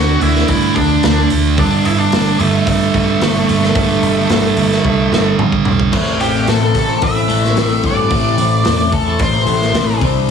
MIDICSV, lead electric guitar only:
0, 0, Header, 1, 2, 480
1, 0, Start_track
1, 0, Key_signature, 0, "minor"
1, 0, Tempo, 544465
1, 1389, Time_signature, 4, 2, 24, 8
1, 9087, End_track
2, 0, Start_track
2, 0, Title_t, "Lead electric guitar"
2, 0, Program_c, 0, 29
2, 0, Note_on_c, 0, 66, 82
2, 0, Note_on_c, 0, 78, 100
2, 162, Note_off_c, 0, 66, 0
2, 191, Note_off_c, 0, 78, 0
2, 195, Note_on_c, 0, 76, 92
2, 206, Note_on_c, 0, 64, 71
2, 420, Note_off_c, 0, 76, 0
2, 421, Note_off_c, 0, 64, 0
2, 431, Note_on_c, 0, 76, 96
2, 439, Note_on_c, 0, 64, 81
2, 657, Note_off_c, 0, 64, 0
2, 664, Note_on_c, 0, 74, 85
2, 668, Note_on_c, 0, 62, 66
2, 676, Note_off_c, 0, 76, 0
2, 1113, Note_off_c, 0, 74, 0
2, 1115, Note_off_c, 0, 62, 0
2, 1403, Note_on_c, 0, 74, 100
2, 1408, Note_on_c, 0, 62, 80
2, 1622, Note_off_c, 0, 62, 0
2, 1634, Note_on_c, 0, 76, 96
2, 1643, Note_off_c, 0, 74, 0
2, 1646, Note_on_c, 0, 64, 80
2, 1749, Note_on_c, 0, 74, 99
2, 1750, Note_off_c, 0, 64, 0
2, 1754, Note_on_c, 0, 62, 81
2, 1755, Note_off_c, 0, 76, 0
2, 2086, Note_off_c, 0, 62, 0
2, 2113, Note_on_c, 0, 69, 82
2, 2119, Note_on_c, 0, 57, 63
2, 2120, Note_off_c, 0, 74, 0
2, 4715, Note_off_c, 0, 69, 0
2, 4718, Note_off_c, 0, 57, 0
2, 5473, Note_on_c, 0, 67, 71
2, 5717, Note_off_c, 0, 67, 0
2, 5721, Note_on_c, 0, 69, 85
2, 6200, Note_on_c, 0, 76, 99
2, 6208, Note_off_c, 0, 69, 0
2, 6929, Note_off_c, 0, 76, 0
2, 6932, Note_on_c, 0, 74, 93
2, 7844, Note_off_c, 0, 74, 0
2, 7876, Note_on_c, 0, 69, 77
2, 8118, Note_off_c, 0, 69, 0
2, 8132, Note_on_c, 0, 72, 76
2, 8803, Note_off_c, 0, 72, 0
2, 9087, End_track
0, 0, End_of_file